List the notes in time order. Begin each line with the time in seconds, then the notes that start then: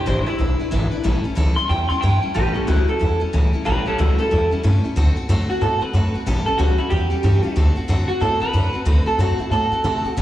0.06 G#1 E3 G#3 D4 E4 B4 C5
0.26 D4 E4 B4
0.39 B1 G#3 D4 E4 B4
0.59 D4 E4 B4, muted upright bass stroke
0.71 G#1 E3 G#3 D4 E4 B4
0.91 D4 E4 B4, muted upright bass stroke
1.04 A1 A2 E3 G3 C#4 E4 A4
1.24 G3 C#4 E4 A4, muted upright bass stroke
1.35 C#2 A2 E3 G3 C#4 E4 A4
1.56 G3 C#4 E4 A4 C6
1.69 E2 G3 C#4 E4 A4 G5
1.89 G3 C#4 E4 A4 C6, muted upright bass stroke
2.01 G2 A2 E3 G3 C#4 E4 A4 G5
2.22 G3 C#4 E4 A4, muted upright bass stroke
2.34 A1 A2 E3 G3 C#4 E4 G4 A4 B4
2.54 G3 C#4 E4 A4, muted upright bass stroke
2.67 C#2 A2 E3 G3 A3 C#4 E4 F#4 A4
2.88 G3 C#4 E4 A4
2.99 E2 G3 C#4 E4 A4
3.20 G3 C#4 E4 A4, muted upright bass stroke
3.33 C#2 A2 E3 G3 C#4 E4 A4
3.53 G3 C#4 E4 A4, muted upright bass stroke
3.65 A1 A2 E3 G3 C#4 E4 G4 A4 B4
3.86 G3 C#4 E4 A4, muted upright bass stroke
3.98 C#2 A2 E3 G3 A3 C#4 E4 F#4 A4
4.18 G3 C#4 E4 A4, muted upright bass stroke
4.30 E2 G3 C#4 E4 A4
4.51 G3 C#4 E4 A4, muted upright bass stroke
4.63 G2 A2 E3 G3 C#4 E4 A4
4.83 G3 C#4 E4 A4, muted upright bass stroke
4.96 D2 D3 A3 C4 F#4 A4
5.16 C4 F#4 A4, muted upright bass stroke
5.29 F#2 D3 A3 C4 F#4 A4
5.49 C4 F#4 A4, muted upright bass stroke
5.61 A2 A3 C4 F#4 A4
5.81 C4 F#4 A4 B4, muted upright bass stroke
5.93 F#2 D3 A3 C4 F#4 A4
6.14 C4 F#4 A4, muted upright bass stroke
6.26 A1 A2 E3 G3 C#4 G4 A4
6.46 G3 C#4 G4 A4, muted upright bass stroke
6.58 C#2 A2 E3 G3 C#4 F#4 G4 A4
6.78 G3 C#4 E4 G4 A4, muted upright bass stroke
6.90 E2 G3 C#4 G4 A4
7.10 G3 C#4 G4 A4, muted upright bass stroke
7.23 G2 A2 E3 G3 C#4 G4 A4
7.43 G3 C#4 G4 A4, muted upright bass stroke
7.56 D2 D3 A3 C4 F#4 A4
7.76 C4 F#4 A4, muted upright bass stroke
7.88 F#2 D3 A3 C4 F#4 A4
8.08 C4 F#4 A4, muted upright bass stroke
8.20 A2 A3 C4 F#4 A4
8.40 C4 F#4 A4 B4, muted upright bass stroke
8.53 F#2 D3 A3 C4 F#4 A4
8.73 C4 F#4 A4, muted upright bass stroke
8.85 D2 D3 A3 C4 F#4 A4
9.05 C4 F#4 A4, muted upright bass stroke
9.18 F#2 D3 A3 C4 F#4 A4
9.39 C4 E4 F#4 A4, muted upright bass stroke
9.51 A2 A3 C4 F#4 A4
9.72 C4 F#4 A4, muted upright bass stroke
9.84 C3 D3 A3 C4 F#4 A4
10.05 C4 F#4 A4, muted upright bass stroke
10.17 A1 A2 E3 G3 C#4 G4 A4